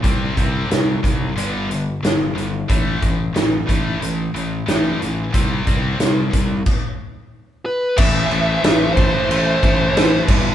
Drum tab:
CC |--------|--------|----x---|xxxxxxxx|
HH |xxxxxxxx|xxxxxxxx|xxxx----|--------|
SD |--o---o-|--o---o-|--o-----|--o---o-|
BD |oo-o----|oo-o----|oo-oo---|o--o-o-o|